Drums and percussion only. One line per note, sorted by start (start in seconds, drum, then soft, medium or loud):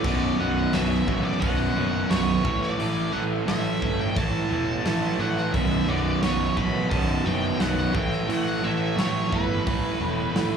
0.04 kick loud
0.04 crash loud
0.73 snare loud
0.73 open hi-hat medium
0.91 snare soft
1.08 kick medium
1.42 kick loud
1.42 open hi-hat medium
2.11 snare loud
2.11 open hi-hat medium
2.45 kick loud
2.63 snare soft
2.79 open hi-hat medium
3.48 snare loud
3.48 open hi-hat medium
3.82 kick medium
4.17 kick loud
4.17 open hi-hat medium
4.85 snare loud
4.85 open hi-hat medium
5.37 snare soft
5.54 kick loud
5.54 open hi-hat medium
6.23 snare loud
6.23 open hi-hat medium
6.57 kick medium
6.91 kick loud
6.91 open hi-hat medium
7.60 snare loud
7.60 open hi-hat medium
7.95 kick loud
8.13 snare soft
8.29 open hi-hat medium
8.98 snare loud
8.98 open hi-hat medium
9.32 kick medium
9.67 kick loud
9.67 open hi-hat medium
10.36 snare loud
10.36 open hi-hat medium